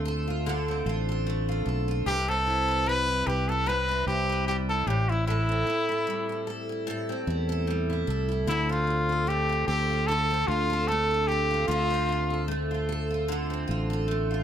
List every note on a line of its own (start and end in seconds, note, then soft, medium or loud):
0.00 0.81 D2 medium
0.00 0.45 D3 medium
0.00 1.25 A3 medium
0.00 0.68 C4 soft
0.00 0.26 F4 soft
0.05 0.45 A4 medium
0.28 0.85 F4 soft
0.46 2.15 D3 medium
0.46 1.08 A4 medium
0.68 2.28 C4 soft
0.86 1.62 A1 medium
0.86 1.47 F4 medium
1.09 1.64 A4 medium
1.27 2.15 A3 medium
1.49 1.87 F4 soft
1.66 2.03 B1 medium
1.66 2.06 A4 medium
1.88 2.15 F4 medium
2.06 3.22 C2 medium
2.06 3.65 C3 medium
2.06 2.30 G4 loud
2.06 2.67 B4 medium
2.28 3.88 C4 soft
2.28 2.89 A4 medium
2.47 3.08 E4 soft
2.68 3.25 B4 medium
2.86 4.48 G3 medium
2.86 3.29 B4 loud
3.09 3.48 E4 soft
3.27 4.03 C2 medium
3.27 3.50 G4 medium
3.27 3.66 B4 medium
3.49 4.07 E4 soft
3.49 3.69 A4 medium
3.66 4.87 C3 medium
3.66 4.28 B4 medium
3.66 4.07 B4 medium
3.89 5.48 C4 soft
4.07 4.83 C2 medium
4.07 4.69 E4 medium
4.07 4.44 G4 medium
4.29 4.96 B4 medium
4.48 5.30 G3 medium
4.48 4.57 G4 medium
4.69 5.09 E4 soft
4.69 4.89 A4 medium
4.87 5.63 A1 medium
4.87 5.26 A2 medium
4.87 5.11 G4 medium
5.09 5.66 E4 medium
5.09 5.27 E4 medium
5.27 6.86 A2 medium
5.27 6.43 E4 medium
5.27 5.88 A4 medium
5.49 7.09 C4 soft
5.67 6.28 E4 soft
5.89 6.47 A4 medium
6.07 7.66 G3 medium
6.29 6.68 E4 soft
6.47 6.87 A4 medium
6.69 7.26 E4 soft
6.87 8.56 A2 medium
6.87 7.49 A4 medium
7.09 8.69 C4 soft
7.27 8.03 E2 medium
7.27 7.88 E4 medium
7.49 8.07 A4 medium
7.67 8.56 G3 medium
7.90 8.27 E4 soft
8.07 8.44 C2 medium
8.07 8.48 A4 medium
8.29 8.56 E4 soft
8.47 9.64 D2 medium
8.47 10.07 D3 medium
8.47 8.72 E4 medium
8.47 9.08 A4 medium
8.69 10.30 C4 soft
8.69 9.30 F4 medium
8.87 9.48 F4 soft
9.09 9.67 A4 medium
9.27 10.87 A3 medium
9.27 9.67 G4 medium
9.49 9.89 F4 soft
9.67 10.44 D2 medium
9.67 10.08 G4 medium
9.67 10.08 A4 medium
9.90 10.47 F4 soft
10.07 11.67 D3 medium
10.07 10.49 A4 medium
10.07 10.69 A4 medium
10.30 11.90 C4 soft
10.48 11.64 D2 medium
10.48 10.89 F4 medium
10.48 11.10 F4 medium
10.70 11.27 A4 medium
10.88 12.47 A3 medium
10.88 11.29 A4 medium
11.11 11.49 F4 soft
11.28 11.67 G4 medium
11.28 11.67 A4 medium
11.51 12.08 F4 medium
11.68 13.65 D2 medium
11.68 13.27 D3 medium
11.68 12.44 F4 medium
11.68 12.29 A4 medium
11.90 13.50 C4 medium
12.09 12.70 F4 soft
12.30 12.88 A4 medium
12.48 14.07 A3 medium
12.71 13.09 F4 soft
12.89 13.28 A4 medium
13.10 13.66 F4 soft
13.28 14.43 D3 medium
13.28 13.89 A4 medium
13.50 14.43 C4 soft
13.68 14.43 A1 medium
13.68 14.29 F4 medium
13.90 14.43 A4 medium
14.08 14.43 A3 medium
14.31 14.43 F4 soft